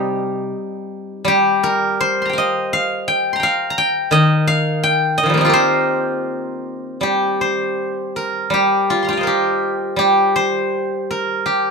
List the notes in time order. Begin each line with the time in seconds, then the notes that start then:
Already playing: C3 G3 D#4 G4 C5 D#5
1.25 G3 G4
1.63 A#4
2.00 C5
2.22 A#5 C6
2.29 F5 G5
2.38 D#5
2.73 F5
3.08 G5
3.33 A#5 C6
3.40 F5 G5
3.70 A#5
3.78 G5
4.11 D#3 D#5
4.47 F5
4.83 G5
5.18 D#5
5.23 D#3 F3
5.29 G3
5.34 A#3 C4
5.41 D#4 F4
5.46 G4 A#4
5.53 C5
7.01 G3 G4
7.41 C5
8.16 A#4
8.50 G3 G4
8.90 F4
9.03 A#5 C6
9.09 F4 G5
9.13 F5
9.17 C5 D#5
9.23 G4 A#4
9.96 G3 G4
10.36 C5
11.11 A#4
11.46 G4